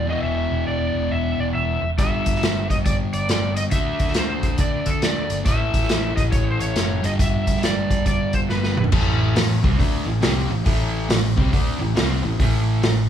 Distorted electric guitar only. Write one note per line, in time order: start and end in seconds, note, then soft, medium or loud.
0.07 1.81 E2 medium
0.07 1.82 B2 medium
0.11 1.83 E3 loud
1.98 3.71 G2 medium
1.98 3.70 D3 medium
1.98 3.72 G3 medium
3.71 5.44 D3 medium
3.71 5.45 A3 medium
3.71 5.46 D4 loud
5.45 7.02 A2 medium
5.45 7.03 E3 medium
5.45 7.04 A3 medium
7.02 8.75 G2 medium
7.02 8.76 D3 medium
7.02 8.77 G3 medium
8.92 9.35 A2 medium
8.92 9.35 E3 medium
8.92 9.36 A3 medium
9.36 9.59 A2 medium
9.36 9.59 E3 medium
9.63 9.77 C3 medium
9.63 9.78 G3 medium
9.63 9.79 C4 loud
9.78 10.06 D3 medium
9.78 10.06 A3 loud
9.78 10.07 D4 medium
10.06 10.20 A2 medium
10.06 10.20 E3 medium
10.21 10.49 C3 medium
10.21 10.50 G3 loud
10.21 10.50 C4 medium
10.50 10.63 A2 medium
10.50 10.63 E3 medium
10.65 11.08 A2 medium
10.65 11.08 E3 medium
10.65 11.09 A3 loud
11.09 11.32 A2 medium
11.09 11.32 E3 medium
11.36 11.51 C3 medium
11.36 11.52 G3 medium
11.36 11.53 C4 medium
11.52 11.80 D3 medium
11.52 11.80 A3 loud
11.52 11.80 D4 loud
11.80 11.93 A2 medium
11.80 11.94 E3 medium
11.95 12.23 C3 medium
11.95 12.23 G3 medium
11.95 12.24 C4 loud
12.23 12.36 A2 medium
12.23 12.37 E3 medium
12.38 12.81 A2 medium
12.38 12.82 E3 medium
12.38 12.83 A3 loud
12.82 13.05 A2 medium
12.82 13.05 E3 medium